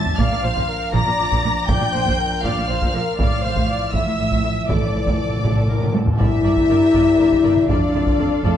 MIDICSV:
0, 0, Header, 1, 10, 480
1, 0, Start_track
1, 0, Key_signature, -1, "minor"
1, 0, Tempo, 500000
1, 183, Time_signature, 6, 3, 24, 8
1, 8227, End_track
2, 0, Start_track
2, 0, Title_t, "Violin section"
2, 0, Program_c, 0, 48
2, 0, Note_on_c, 0, 93, 88
2, 163, Note_off_c, 0, 93, 0
2, 177, Note_on_c, 0, 89, 78
2, 900, Note_off_c, 0, 89, 0
2, 901, Note_on_c, 0, 94, 92
2, 1608, Note_off_c, 0, 94, 0
2, 1616, Note_on_c, 0, 91, 89
2, 2340, Note_off_c, 0, 91, 0
2, 2340, Note_on_c, 0, 89, 74
2, 3053, Note_off_c, 0, 89, 0
2, 3065, Note_on_c, 0, 89, 76
2, 3769, Note_off_c, 0, 89, 0
2, 3781, Note_on_c, 0, 88, 74
2, 4502, Note_off_c, 0, 88, 0
2, 4509, Note_on_c, 0, 86, 58
2, 5682, Note_off_c, 0, 86, 0
2, 5944, Note_on_c, 0, 76, 65
2, 7345, Note_off_c, 0, 76, 0
2, 7377, Note_on_c, 0, 74, 49
2, 8086, Note_off_c, 0, 74, 0
2, 8105, Note_on_c, 0, 69, 70
2, 8227, Note_off_c, 0, 69, 0
2, 8227, End_track
3, 0, Start_track
3, 0, Title_t, "Violin section"
3, 0, Program_c, 1, 48
3, 0, Note_on_c, 1, 81, 71
3, 186, Note_off_c, 1, 81, 0
3, 187, Note_on_c, 1, 77, 72
3, 891, Note_off_c, 1, 77, 0
3, 910, Note_on_c, 1, 82, 79
3, 1612, Note_off_c, 1, 82, 0
3, 1632, Note_on_c, 1, 79, 90
3, 2333, Note_off_c, 1, 79, 0
3, 2353, Note_on_c, 1, 77, 65
3, 3057, Note_off_c, 1, 77, 0
3, 3069, Note_on_c, 1, 77, 71
3, 3772, Note_off_c, 1, 77, 0
3, 3786, Note_on_c, 1, 76, 63
3, 4490, Note_off_c, 1, 76, 0
3, 4515, Note_on_c, 1, 74, 61
3, 5709, Note_off_c, 1, 74, 0
3, 5944, Note_on_c, 1, 76, 80
3, 7345, Note_off_c, 1, 76, 0
3, 7389, Note_on_c, 1, 74, 61
3, 8092, Note_off_c, 1, 74, 0
3, 8104, Note_on_c, 1, 69, 61
3, 8227, Note_off_c, 1, 69, 0
3, 8227, End_track
4, 0, Start_track
4, 0, Title_t, "Viola section"
4, 0, Program_c, 2, 48
4, 0, Note_on_c, 2, 76, 59
4, 175, Note_off_c, 2, 76, 0
4, 176, Note_on_c, 2, 74, 63
4, 415, Note_off_c, 2, 74, 0
4, 416, Note_on_c, 2, 72, 55
4, 648, Note_on_c, 2, 70, 56
4, 660, Note_off_c, 2, 72, 0
4, 896, Note_off_c, 2, 70, 0
4, 896, Note_on_c, 2, 74, 67
4, 1609, Note_off_c, 2, 74, 0
4, 1620, Note_on_c, 2, 74, 59
4, 1857, Note_off_c, 2, 74, 0
4, 1861, Note_on_c, 2, 72, 64
4, 2097, Note_off_c, 2, 72, 0
4, 2100, Note_on_c, 2, 70, 60
4, 2341, Note_off_c, 2, 70, 0
4, 2344, Note_on_c, 2, 74, 67
4, 2577, Note_on_c, 2, 72, 58
4, 2584, Note_off_c, 2, 74, 0
4, 2818, Note_on_c, 2, 70, 59
4, 2820, Note_off_c, 2, 72, 0
4, 3057, Note_on_c, 2, 74, 66
4, 3060, Note_off_c, 2, 70, 0
4, 3295, Note_off_c, 2, 74, 0
4, 3295, Note_on_c, 2, 72, 59
4, 3536, Note_on_c, 2, 74, 55
4, 3539, Note_off_c, 2, 72, 0
4, 3776, Note_on_c, 2, 76, 70
4, 3779, Note_off_c, 2, 74, 0
4, 4485, Note_off_c, 2, 76, 0
4, 4501, Note_on_c, 2, 69, 52
4, 5174, Note_off_c, 2, 69, 0
4, 5224, Note_on_c, 2, 69, 57
4, 5447, Note_off_c, 2, 69, 0
4, 5464, Note_on_c, 2, 70, 48
4, 5703, Note_on_c, 2, 69, 43
4, 5704, Note_off_c, 2, 70, 0
4, 5937, Note_on_c, 2, 70, 49
4, 5937, Note_on_c, 2, 74, 47
4, 5943, Note_off_c, 2, 69, 0
4, 6014, Note_off_c, 2, 70, 0
4, 6014, Note_off_c, 2, 74, 0
4, 6182, Note_on_c, 2, 70, 42
4, 6183, Note_on_c, 2, 74, 48
4, 6259, Note_off_c, 2, 70, 0
4, 6259, Note_off_c, 2, 74, 0
4, 6424, Note_on_c, 2, 70, 46
4, 6425, Note_on_c, 2, 74, 47
4, 6501, Note_off_c, 2, 70, 0
4, 6502, Note_off_c, 2, 74, 0
4, 6666, Note_on_c, 2, 70, 52
4, 6666, Note_on_c, 2, 74, 48
4, 6743, Note_off_c, 2, 70, 0
4, 6743, Note_off_c, 2, 74, 0
4, 6908, Note_on_c, 2, 74, 43
4, 6910, Note_on_c, 2, 70, 41
4, 6985, Note_off_c, 2, 74, 0
4, 6987, Note_off_c, 2, 70, 0
4, 7140, Note_on_c, 2, 74, 47
4, 7144, Note_on_c, 2, 70, 48
4, 7217, Note_off_c, 2, 74, 0
4, 7220, Note_off_c, 2, 70, 0
4, 7388, Note_on_c, 2, 74, 47
4, 7391, Note_on_c, 2, 69, 50
4, 7465, Note_off_c, 2, 74, 0
4, 7468, Note_off_c, 2, 69, 0
4, 7629, Note_on_c, 2, 69, 44
4, 7629, Note_on_c, 2, 74, 44
4, 7705, Note_off_c, 2, 74, 0
4, 7706, Note_off_c, 2, 69, 0
4, 7869, Note_on_c, 2, 74, 46
4, 7870, Note_on_c, 2, 69, 50
4, 7946, Note_off_c, 2, 74, 0
4, 7947, Note_off_c, 2, 69, 0
4, 8109, Note_on_c, 2, 74, 52
4, 8110, Note_on_c, 2, 69, 50
4, 8186, Note_off_c, 2, 74, 0
4, 8187, Note_off_c, 2, 69, 0
4, 8227, End_track
5, 0, Start_track
5, 0, Title_t, "String section"
5, 0, Program_c, 3, 48
5, 5940, Note_on_c, 3, 62, 64
5, 5941, Note_on_c, 3, 70, 63
5, 5942, Note_on_c, 3, 67, 68
5, 5945, Note_on_c, 3, 74, 65
5, 7344, Note_off_c, 3, 67, 0
5, 7344, Note_off_c, 3, 70, 0
5, 7346, Note_off_c, 3, 74, 0
5, 7376, Note_on_c, 3, 69, 63
5, 7377, Note_on_c, 3, 65, 66
5, 7378, Note_on_c, 3, 77, 66
5, 8227, Note_off_c, 3, 62, 0
5, 8227, Note_off_c, 3, 65, 0
5, 8227, Note_off_c, 3, 69, 0
5, 8227, Note_off_c, 3, 77, 0
5, 8227, End_track
6, 0, Start_track
6, 0, Title_t, "French horn section"
6, 0, Program_c, 4, 60
6, 0, Note_on_c, 4, 53, 52
6, 0, Note_on_c, 4, 62, 54
6, 149, Note_off_c, 4, 53, 0
6, 151, Note_off_c, 4, 62, 0
6, 187, Note_on_c, 4, 53, 59
6, 188, Note_on_c, 4, 62, 68
6, 2892, Note_off_c, 4, 53, 0
6, 2892, Note_off_c, 4, 62, 0
6, 3055, Note_on_c, 4, 52, 68
6, 3059, Note_on_c, 4, 53, 61
6, 5660, Note_off_c, 4, 52, 0
6, 5663, Note_off_c, 4, 53, 0
6, 5942, Note_on_c, 4, 64, 82
6, 7344, Note_off_c, 4, 64, 0
6, 7380, Note_on_c, 4, 62, 68
6, 8100, Note_on_c, 4, 57, 76
6, 8102, Note_off_c, 4, 62, 0
6, 8227, Note_off_c, 4, 57, 0
6, 8227, End_track
7, 0, Start_track
7, 0, Title_t, "Cello section"
7, 0, Program_c, 5, 48
7, 175, Note_on_c, 5, 46, 65
7, 225, Note_off_c, 5, 46, 0
7, 293, Note_on_c, 5, 46, 52
7, 343, Note_off_c, 5, 46, 0
7, 415, Note_on_c, 5, 46, 44
7, 465, Note_off_c, 5, 46, 0
7, 542, Note_on_c, 5, 46, 71
7, 591, Note_off_c, 5, 46, 0
7, 895, Note_on_c, 5, 46, 75
7, 945, Note_off_c, 5, 46, 0
7, 1018, Note_on_c, 5, 46, 50
7, 1067, Note_off_c, 5, 46, 0
7, 1140, Note_on_c, 5, 46, 48
7, 1188, Note_off_c, 5, 46, 0
7, 1263, Note_on_c, 5, 46, 72
7, 1311, Note_off_c, 5, 46, 0
7, 1384, Note_on_c, 5, 46, 46
7, 1432, Note_off_c, 5, 46, 0
7, 1621, Note_on_c, 5, 46, 64
7, 1669, Note_off_c, 5, 46, 0
7, 1738, Note_on_c, 5, 46, 49
7, 1787, Note_off_c, 5, 46, 0
7, 1861, Note_on_c, 5, 46, 48
7, 1910, Note_off_c, 5, 46, 0
7, 1978, Note_on_c, 5, 46, 68
7, 2027, Note_off_c, 5, 46, 0
7, 2340, Note_on_c, 5, 46, 68
7, 2389, Note_off_c, 5, 46, 0
7, 2469, Note_on_c, 5, 46, 50
7, 2516, Note_off_c, 5, 46, 0
7, 2588, Note_on_c, 5, 46, 50
7, 2635, Note_off_c, 5, 46, 0
7, 2707, Note_on_c, 5, 46, 70
7, 2754, Note_off_c, 5, 46, 0
7, 2823, Note_on_c, 5, 46, 50
7, 2871, Note_off_c, 5, 46, 0
7, 3065, Note_on_c, 5, 45, 67
7, 3112, Note_off_c, 5, 45, 0
7, 3187, Note_on_c, 5, 45, 46
7, 3234, Note_off_c, 5, 45, 0
7, 3312, Note_on_c, 5, 45, 44
7, 3358, Note_off_c, 5, 45, 0
7, 3425, Note_on_c, 5, 45, 65
7, 3472, Note_off_c, 5, 45, 0
7, 3791, Note_on_c, 5, 45, 63
7, 3838, Note_off_c, 5, 45, 0
7, 3909, Note_on_c, 5, 45, 46
7, 3956, Note_off_c, 5, 45, 0
7, 4024, Note_on_c, 5, 45, 46
7, 4072, Note_off_c, 5, 45, 0
7, 4142, Note_on_c, 5, 45, 69
7, 4190, Note_off_c, 5, 45, 0
7, 4267, Note_on_c, 5, 45, 42
7, 4314, Note_off_c, 5, 45, 0
7, 4504, Note_on_c, 5, 45, 60
7, 4552, Note_off_c, 5, 45, 0
7, 4621, Note_on_c, 5, 45, 42
7, 4670, Note_off_c, 5, 45, 0
7, 4742, Note_on_c, 5, 45, 43
7, 4790, Note_off_c, 5, 45, 0
7, 4857, Note_on_c, 5, 45, 63
7, 4906, Note_off_c, 5, 45, 0
7, 5218, Note_on_c, 5, 45, 56
7, 5267, Note_off_c, 5, 45, 0
7, 5343, Note_on_c, 5, 45, 42
7, 5391, Note_off_c, 5, 45, 0
7, 5457, Note_on_c, 5, 45, 39
7, 5506, Note_off_c, 5, 45, 0
7, 5570, Note_on_c, 5, 45, 60
7, 5621, Note_off_c, 5, 45, 0
7, 5693, Note_on_c, 5, 45, 42
7, 5743, Note_off_c, 5, 45, 0
7, 5940, Note_on_c, 5, 43, 55
7, 6017, Note_off_c, 5, 43, 0
7, 6182, Note_on_c, 5, 43, 52
7, 6259, Note_off_c, 5, 43, 0
7, 6419, Note_on_c, 5, 43, 51
7, 6496, Note_off_c, 5, 43, 0
7, 6664, Note_on_c, 5, 43, 56
7, 6741, Note_off_c, 5, 43, 0
7, 6903, Note_on_c, 5, 43, 54
7, 6980, Note_off_c, 5, 43, 0
7, 7147, Note_on_c, 5, 43, 52
7, 7224, Note_off_c, 5, 43, 0
7, 7390, Note_on_c, 5, 41, 56
7, 7467, Note_off_c, 5, 41, 0
7, 7622, Note_on_c, 5, 41, 53
7, 7699, Note_off_c, 5, 41, 0
7, 7864, Note_on_c, 5, 41, 51
7, 7941, Note_off_c, 5, 41, 0
7, 8102, Note_on_c, 5, 41, 55
7, 8179, Note_off_c, 5, 41, 0
7, 8227, End_track
8, 0, Start_track
8, 0, Title_t, "Timpani"
8, 0, Program_c, 6, 47
8, 3065, Note_on_c, 6, 45, 27
8, 3127, Note_off_c, 6, 45, 0
8, 3204, Note_on_c, 6, 45, 28
8, 3263, Note_off_c, 6, 45, 0
8, 3274, Note_on_c, 6, 45, 29
8, 3343, Note_off_c, 6, 45, 0
8, 3355, Note_on_c, 6, 45, 28
8, 3414, Note_off_c, 6, 45, 0
8, 3426, Note_on_c, 6, 45, 31
8, 3482, Note_off_c, 6, 45, 0
8, 3494, Note_on_c, 6, 45, 33
8, 3549, Note_off_c, 6, 45, 0
8, 3560, Note_on_c, 6, 45, 31
8, 3630, Note_off_c, 6, 45, 0
8, 3640, Note_on_c, 6, 45, 33
8, 3703, Note_off_c, 6, 45, 0
8, 3715, Note_on_c, 6, 45, 33
8, 3765, Note_off_c, 6, 45, 0
8, 3776, Note_on_c, 6, 45, 35
8, 3834, Note_off_c, 6, 45, 0
8, 3846, Note_on_c, 6, 45, 35
8, 3907, Note_off_c, 6, 45, 0
8, 3989, Note_on_c, 6, 45, 37
8, 4045, Note_off_c, 6, 45, 0
8, 4056, Note_on_c, 6, 45, 39
8, 4122, Note_off_c, 6, 45, 0
8, 4134, Note_on_c, 6, 45, 37
8, 4196, Note_off_c, 6, 45, 0
8, 4208, Note_on_c, 6, 45, 40
8, 4270, Note_off_c, 6, 45, 0
8, 4350, Note_on_c, 6, 45, 42
8, 4413, Note_off_c, 6, 45, 0
8, 4425, Note_on_c, 6, 45, 39
8, 4484, Note_off_c, 6, 45, 0
8, 4496, Note_on_c, 6, 45, 45
8, 4557, Note_off_c, 6, 45, 0
8, 4569, Note_on_c, 6, 45, 47
8, 4632, Note_off_c, 6, 45, 0
8, 4643, Note_on_c, 6, 45, 47
8, 4703, Note_off_c, 6, 45, 0
8, 4714, Note_on_c, 6, 45, 51
8, 4776, Note_off_c, 6, 45, 0
8, 4788, Note_on_c, 6, 45, 49
8, 4846, Note_off_c, 6, 45, 0
8, 4858, Note_on_c, 6, 45, 53
8, 4912, Note_off_c, 6, 45, 0
8, 4924, Note_on_c, 6, 45, 58
8, 4990, Note_off_c, 6, 45, 0
8, 5001, Note_on_c, 6, 45, 54
8, 5071, Note_off_c, 6, 45, 0
8, 5082, Note_on_c, 6, 45, 58
8, 5137, Note_off_c, 6, 45, 0
8, 5149, Note_on_c, 6, 45, 59
8, 5211, Note_off_c, 6, 45, 0
8, 5222, Note_on_c, 6, 45, 57
8, 5285, Note_off_c, 6, 45, 0
8, 5297, Note_on_c, 6, 45, 62
8, 5355, Note_off_c, 6, 45, 0
8, 5366, Note_on_c, 6, 45, 61
8, 5427, Note_off_c, 6, 45, 0
8, 5439, Note_on_c, 6, 45, 63
8, 5497, Note_off_c, 6, 45, 0
8, 5508, Note_on_c, 6, 45, 72
8, 5569, Note_off_c, 6, 45, 0
8, 5580, Note_on_c, 6, 45, 67
8, 5644, Note_off_c, 6, 45, 0
8, 5656, Note_on_c, 6, 45, 71
8, 5722, Note_off_c, 6, 45, 0
8, 5732, Note_on_c, 6, 45, 72
8, 5794, Note_off_c, 6, 45, 0
8, 5805, Note_on_c, 6, 45, 68
8, 5869, Note_off_c, 6, 45, 0
8, 5884, Note_on_c, 6, 45, 78
8, 5945, Note_off_c, 6, 45, 0
8, 8227, End_track
9, 0, Start_track
9, 0, Title_t, "Double bass section"
9, 0, Program_c, 7, 48
9, 183, Note_on_c, 7, 34, 68
9, 231, Note_off_c, 7, 34, 0
9, 425, Note_on_c, 7, 34, 43
9, 473, Note_off_c, 7, 34, 0
9, 908, Note_on_c, 7, 34, 69
9, 955, Note_off_c, 7, 34, 0
9, 1145, Note_on_c, 7, 34, 45
9, 1193, Note_off_c, 7, 34, 0
9, 1380, Note_on_c, 7, 34, 50
9, 1429, Note_off_c, 7, 34, 0
9, 1621, Note_on_c, 7, 34, 69
9, 1669, Note_off_c, 7, 34, 0
9, 1868, Note_on_c, 7, 34, 49
9, 1915, Note_off_c, 7, 34, 0
9, 2342, Note_on_c, 7, 34, 73
9, 2390, Note_off_c, 7, 34, 0
9, 2587, Note_on_c, 7, 34, 51
9, 2635, Note_off_c, 7, 34, 0
9, 2824, Note_on_c, 7, 34, 46
9, 2871, Note_off_c, 7, 34, 0
9, 3067, Note_on_c, 7, 33, 69
9, 3114, Note_off_c, 7, 33, 0
9, 3306, Note_on_c, 7, 33, 44
9, 3353, Note_off_c, 7, 33, 0
9, 3783, Note_on_c, 7, 33, 70
9, 3831, Note_off_c, 7, 33, 0
9, 4025, Note_on_c, 7, 33, 44
9, 4073, Note_off_c, 7, 33, 0
9, 4263, Note_on_c, 7, 33, 40
9, 4311, Note_off_c, 7, 33, 0
9, 4502, Note_on_c, 7, 33, 63
9, 4550, Note_off_c, 7, 33, 0
9, 4744, Note_on_c, 7, 33, 38
9, 4792, Note_off_c, 7, 33, 0
9, 5226, Note_on_c, 7, 33, 54
9, 5273, Note_off_c, 7, 33, 0
9, 5462, Note_on_c, 7, 33, 43
9, 5510, Note_off_c, 7, 33, 0
9, 5705, Note_on_c, 7, 33, 40
9, 5753, Note_off_c, 7, 33, 0
9, 5944, Note_on_c, 7, 31, 59
9, 6020, Note_off_c, 7, 31, 0
9, 6184, Note_on_c, 7, 31, 50
9, 6261, Note_off_c, 7, 31, 0
9, 6426, Note_on_c, 7, 31, 54
9, 6502, Note_off_c, 7, 31, 0
9, 6666, Note_on_c, 7, 31, 56
9, 6743, Note_off_c, 7, 31, 0
9, 6908, Note_on_c, 7, 31, 53
9, 6985, Note_off_c, 7, 31, 0
9, 7144, Note_on_c, 7, 31, 51
9, 7220, Note_off_c, 7, 31, 0
9, 7381, Note_on_c, 7, 29, 58
9, 7458, Note_off_c, 7, 29, 0
9, 7626, Note_on_c, 7, 29, 49
9, 7703, Note_off_c, 7, 29, 0
9, 7864, Note_on_c, 7, 29, 55
9, 7940, Note_off_c, 7, 29, 0
9, 8100, Note_on_c, 7, 29, 56
9, 8177, Note_off_c, 7, 29, 0
9, 8227, End_track
10, 0, Start_track
10, 0, Title_t, "Taiko and cinematic ensemble drums"
10, 58, Note_on_c, 9, 43, 80
10, 154, Note_off_c, 9, 43, 0
10, 175, Note_on_c, 9, 41, 76
10, 271, Note_off_c, 9, 41, 0
10, 536, Note_on_c, 9, 41, 63
10, 632, Note_off_c, 9, 41, 0
10, 898, Note_on_c, 9, 41, 72
10, 994, Note_off_c, 9, 41, 0
10, 1262, Note_on_c, 9, 41, 64
10, 1358, Note_off_c, 9, 41, 0
10, 1618, Note_on_c, 9, 41, 84
10, 1714, Note_off_c, 9, 41, 0
10, 1983, Note_on_c, 9, 41, 73
10, 2079, Note_off_c, 9, 41, 0
10, 2340, Note_on_c, 9, 41, 68
10, 2436, Note_off_c, 9, 41, 0
10, 2703, Note_on_c, 9, 41, 63
10, 2799, Note_off_c, 9, 41, 0
10, 3066, Note_on_c, 9, 41, 79
10, 3162, Note_off_c, 9, 41, 0
10, 3421, Note_on_c, 9, 41, 69
10, 3517, Note_off_c, 9, 41, 0
10, 3780, Note_on_c, 9, 41, 67
10, 3876, Note_off_c, 9, 41, 0
10, 4141, Note_on_c, 9, 41, 62
10, 4237, Note_off_c, 9, 41, 0
10, 4503, Note_on_c, 9, 41, 81
10, 4599, Note_off_c, 9, 41, 0
10, 4864, Note_on_c, 9, 41, 67
10, 4960, Note_off_c, 9, 41, 0
10, 5224, Note_on_c, 9, 41, 72
10, 5320, Note_off_c, 9, 41, 0
10, 5585, Note_on_c, 9, 47, 72
10, 5681, Note_off_c, 9, 47, 0
10, 5705, Note_on_c, 9, 48, 80
10, 5801, Note_off_c, 9, 48, 0
10, 5827, Note_on_c, 9, 43, 85
10, 5923, Note_off_c, 9, 43, 0
10, 5947, Note_on_c, 9, 41, 87
10, 6043, Note_off_c, 9, 41, 0
10, 6303, Note_on_c, 9, 41, 69
10, 6399, Note_off_c, 9, 41, 0
10, 6665, Note_on_c, 9, 41, 67
10, 6761, Note_off_c, 9, 41, 0
10, 7027, Note_on_c, 9, 41, 70
10, 7123, Note_off_c, 9, 41, 0
10, 7146, Note_on_c, 9, 47, 56
10, 7242, Note_off_c, 9, 47, 0
10, 7262, Note_on_c, 9, 47, 51
10, 7358, Note_off_c, 9, 47, 0
10, 7384, Note_on_c, 9, 41, 83
10, 7480, Note_off_c, 9, 41, 0
10, 7743, Note_on_c, 9, 41, 73
10, 7839, Note_off_c, 9, 41, 0
10, 8103, Note_on_c, 9, 41, 75
10, 8199, Note_off_c, 9, 41, 0
10, 8227, End_track
0, 0, End_of_file